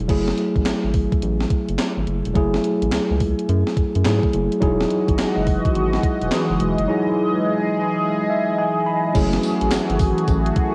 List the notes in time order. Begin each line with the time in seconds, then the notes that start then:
0.08 F#1 F#3 A3 E4 G#4, kick, closed hi-hat, crash
0.28 snare
0.38 closed hi-hat
0.56 A1, kick, closed hi-hat
0.66 G#1, snare, clap, closed hi-hat
0.84 G#1
0.94 kick, open hi-hat
1.12 kick, closed hi-hat
1.22 A1, closed hi-hat
1.41 snare
1.50 kick, closed hi-hat
1.69 F#1, closed hi-hat
1.79 snare, clap, closed hi-hat
1.97 G#1
2.07 F#1, closed hi-hat
2.25 E1, closed hi-hat
2.34 F#1 F#3 A3 E4 G#4, kick, closed hi-hat
2.54 snare
2.64 closed hi-hat
2.82 A1, closed hi-hat
2.92 C#2, snare, clap, closed hi-hat
3.11 C#2
3.20 kick, open hi-hat
3.39 closed hi-hat
3.49 F#2, closed hi-hat
3.67 snare
3.77 F#2, kick, closed hi-hat
3.95 F#2, closed hi-hat
4.05 G#2 F#3 A3 E4 G#4, snare, clap, closed hi-hat
4.23 kick
4.33 F#1, closed hi-hat
4.52 closed hi-hat
4.60 E1 E3 F#3 G#3 D#4 E4 F#4 G#4 D#5, kick, closed hi-hat
4.81 snare
4.90 closed hi-hat
5.08 G#1, kick, closed hi-hat
5.19 F#1, snare, clap, closed hi-hat
5.37 F#1
5.47 kick, open hi-hat
5.65 kick, closed hi-hat
5.75 G#1, closed hi-hat
5.93 snare
6.03 kick, closed hi-hat
6.21 E1, closed hi-hat
6.31 snare, clap, closed hi-hat
6.50 F#1
6.60 E1, closed hi-hat
6.78 F#1, closed hi-hat
6.87 F#3 D#4 E4 G#4
8.30 E5
8.59 G#5
8.86 B5
9.14 F#1 E3 F#3 A3 C#4 E4 F#4 G#4, kick, closed hi-hat, crash, tambourine
9.33 snare, closed hi-hat
9.43 closed hi-hat, tambourine
9.61 A1, closed hi-hat
9.71 G#1, snare, clap, closed hi-hat, tambourine
9.90 G#1, closed hi-hat
9.99 kick, open hi-hat, tambourine
10.18 closed hi-hat
10.28 A1, kick, closed hi-hat, tambourine
10.46 closed hi-hat
10.56 kick, closed hi-hat